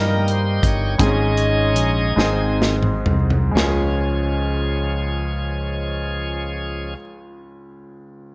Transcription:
0.00 0.59 G2 medium
0.00 1.00 D#3 soft
0.00 1.00 G3 medium
0.00 1.01 A#3 medium
0.00 0.95 D#4 soft
0.00 1.00 D#4 medium
0.00 0.95 G4 soft
0.00 1.01 G4 medium
0.00 0.30 A#4 medium
0.00 0.69 A#4 medium
0.28 0.65 C5 medium
0.28 closed hi-hat soft
0.63 0.96 G1 medium
0.63 0.99 C#5 medium
0.63 kick medium
0.63 closed hi-hat medium
0.98 1.76 G#1 medium
0.98 2.13 G#2 medium
0.98 1.82 G#3 medium
0.98 2.14 G#3 soft
0.98 1.07 C4 soft
0.98 2.14 C#4 soft
0.98 1.83 D#4 medium
0.98 2.14 D#4 soft
0.98 1.83 G#4 medium
0.98 2.57 G#4 medium
0.98 kick medium
0.98 closed hi-hat medium
1.03 1.86 C#4 medium
1.03 2.59 D#5 medium
1.37 closed hi-hat soft
1.76 2.14 A#1 medium
1.76 closed hi-hat medium
2.16 3.02 G#1 medium
2.16 3.52 G#2 medium
2.16 3.14 G#3 medium
2.16 2.76 G#3 soft
2.16 3.14 C4 medium
2.16 2.76 C4 soft
2.16 3.15 D#4 medium
2.16 2.77 D#4 soft
2.16 3.15 G#4 medium
2.16 snare soft
2.62 snare medium
2.83 mid tom medium
3.06 3.52 C2 medium
3.06 floor tom medium
3.30 floor tom medium
3.51 6.93 C#2 medium
3.51 6.90 G#3 medium
3.51 6.93 C#4 medium
3.55 6.95 C#2 medium
3.55 6.94 F3 medium
3.55 6.94 G#3 medium
3.55 6.94 C#4 medium
3.55 6.96 F4 medium
3.55 6.94 G#4 medium
3.55 snare medium
3.62 7.00 G#4 medium

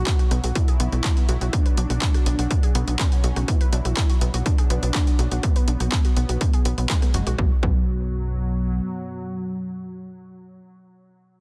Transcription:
0.00 7.37 B2 medium
0.00 7.37 F#3 medium
0.00 0.46 F#4 loud
0.07 0.14 D4 medium
0.07 kick loud
0.07 clap loud
0.07 closed hi-hat medium
0.19 0.29 F#4 medium
0.19 closed hi-hat soft
0.31 0.40 B1 loud
0.31 0.41 B3 medium
0.31 cross-stick medium
0.31 closed hi-hat medium
0.44 0.52 B1 medium
0.44 0.53 F#4 medium
0.44 closed hi-hat soft
0.55 0.62 D4 medium
0.55 1.55 E4 loud
0.55 kick loud
0.55 closed hi-hat medium
0.68 0.78 G#4 medium
0.68 closed hi-hat soft
0.80 0.89 B1 medium
0.80 0.90 B3 loud
0.80 closed hi-hat loud
0.92 1.01 B1 medium
0.92 0.99 B3 medium
0.92 cross-stick soft
0.92 closed hi-hat soft
1.04 1.11 D4 medium
1.04 kick loud
1.04 clap loud
1.04 closed hi-hat medium
1.17 1.23 B3 medium
1.17 closed hi-hat soft
1.29 1.38 B1 loud
1.29 1.33 F#4 medium
1.29 closed hi-hat loud
1.41 1.50 B1 medium
1.41 1.51 F#4 medium
1.41 closed hi-hat soft
1.53 1.60 B3 medium
1.53 2.90 D4 loud
1.53 kick loud
1.53 cross-stick medium
1.53 closed hi-hat medium
1.66 1.75 B4 medium
1.66 closed hi-hat soft
1.77 1.86 B1 medium
1.77 1.82 D4 medium
1.77 closed hi-hat loud
1.90 1.98 B1 medium
1.90 1.96 F#4 medium
1.90 closed hi-hat soft
2.02 2.09 D4 medium
2.02 kick loud
2.02 clap loud
2.02 closed hi-hat medium
2.14 2.24 F#4 medium
2.14 cross-stick medium
2.14 closed hi-hat soft
2.26 2.35 B1 loud
2.26 2.36 B3 medium
2.26 closed hi-hat medium
2.39 2.47 B1 medium
2.39 2.48 F#4 medium
2.39 closed hi-hat soft
2.51 2.57 D4 medium
2.51 kick loud
2.51 closed hi-hat medium
2.63 2.73 G#4 medium
2.63 closed hi-hat soft
2.75 2.84 B1 loud
2.75 2.85 B3 loud
2.75 cross-stick medium
2.75 closed hi-hat loud
2.88 2.96 B1 medium
2.88 2.94 B3 medium
2.88 closed hi-hat soft
2.99 3.50 C#4 medium
2.99 3.06 D4 medium
2.99 kick loud
2.99 clap loud
2.99 closed hi-hat medium
3.12 3.18 B3 medium
3.12 closed hi-hat soft
3.24 3.33 B1 loud
3.24 3.28 F#4 medium
3.24 closed hi-hat medium
3.36 3.45 B1 medium
3.36 3.46 F#4 medium
3.36 cross-stick medium
3.36 closed hi-hat soft
3.48 3.55 B3 medium
3.48 4.36 E4 loud
3.48 kick loud
3.48 closed hi-hat medium
3.61 3.70 B4 medium
3.61 closed hi-hat soft
3.73 3.81 B1 loud
3.73 3.77 D4 medium
3.73 closed hi-hat loud
3.85 3.94 B1 medium
3.85 3.92 F#4 medium
3.85 closed hi-hat soft
3.97 4.04 D4 medium
3.97 kick loud
3.97 cross-stick medium
3.97 clap loud
3.97 closed hi-hat medium
4.10 4.19 F#4 medium
4.10 closed hi-hat soft
4.21 4.30 B1 loud
4.21 4.32 B3 medium
4.21 closed hi-hat medium
4.34 4.42 B1 medium
4.34 4.44 F#4 medium
4.34 closed hi-hat soft
4.46 5.45 D4 loud
4.46 4.53 D4 medium
4.46 kick loud
4.46 closed hi-hat medium
4.58 4.68 G#4 medium
4.58 cross-stick medium
4.58 closed hi-hat soft
4.70 4.79 B1 loud
4.70 4.80 B3 loud
4.70 closed hi-hat loud
4.83 4.91 B1 medium
4.83 4.89 B3 medium
4.83 closed hi-hat soft
4.95 5.01 D4 medium
4.95 kick loud
4.95 clap loud
4.95 closed hi-hat medium
5.07 5.14 B3 medium
5.07 closed hi-hat soft
5.19 5.28 B1 medium
5.19 5.23 F#4 medium
5.19 cross-stick medium
5.19 closed hi-hat medium
5.31 5.40 B1 medium
5.31 5.41 F#4 medium
5.31 closed hi-hat soft
5.43 6.80 B3 loud
5.43 5.50 B3 medium
5.43 kick loud
5.43 closed hi-hat medium
5.56 5.66 B4 medium
5.56 closed hi-hat soft
5.68 5.77 B1 medium
5.68 5.72 D4 medium
5.68 closed hi-hat loud
5.80 5.89 B1 medium
5.80 5.87 F#4 medium
5.80 cross-stick medium
5.80 closed hi-hat soft
5.92 5.99 D4 medium
5.92 kick loud
5.92 clap loud
5.92 closed hi-hat medium
6.05 6.14 F#4 medium
6.05 closed hi-hat soft
6.16 6.25 B1 medium
6.16 6.27 B3 medium
6.16 closed hi-hat medium
6.29 6.37 B1 medium
6.29 6.39 F#4 medium
6.29 closed hi-hat soft
6.41 6.48 D4 medium
6.41 kick loud
6.41 cross-stick medium
6.41 closed hi-hat medium
6.53 6.63 G#4 medium
6.53 closed hi-hat soft
6.65 6.74 B1 medium
6.65 6.76 B3 loud
6.65 closed hi-hat loud
6.78 6.86 B1 medium
6.78 6.84 B3 medium
6.78 closed hi-hat soft
6.90 7.35 G#3 medium
6.90 6.97 D4 medium
6.90 kick loud
6.90 clap loud
6.90 closed hi-hat medium
7.02 7.09 B3 medium
7.02 cross-stick medium
7.02 closed hi-hat medium
7.14 7.23 F#1 loud
7.14 7.18 F#4 medium
7.14 closed hi-hat medium
7.27 7.35 B1 medium
7.27 7.36 F#4 medium
7.27 closed hi-hat soft
7.38 7.52 B1 loud
7.38 10.35 B2 medium
7.38 10.35 F#3 medium
7.38 7.52 F#3 loud
7.38 7.52 B3 loud
7.38 kick loud
7.63 8.81 B1 medium
7.63 10.59 F#3 loud
7.63 7.77 B3 medium
7.63 kick loud

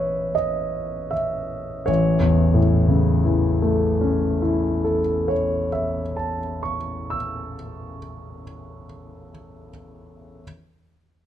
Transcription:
0.00 1.84 E3 soft
0.00 1.84 B3 soft
0.00 1.84 C#4 soft
0.00 1.84 G#4 soft
0.00 1.90 B4 medium
0.00 0.35 C#5 medium
0.00 1.11 E5 medium
0.35 1.12 D#5 soft
1.11 2.56 E5 soft
1.86 5.01 A1 soft
1.86 4.99 C#5 soft
2.19 5.33 E2 soft
2.54 5.67 A2 soft
2.88 6.01 C#3 soft
3.25 6.38 E3 soft
3.62 6.76 A3 soft
4.01 7.14 C#4 soft
4.42 7.55 E4 soft
4.84 7.98 A4 soft
5.28 8.41 C#5 soft
5.72 8.86 E5 soft
6.16 9.30 A5 soft
6.63 9.70 C#6 soft
7.10 9.70 E6 soft

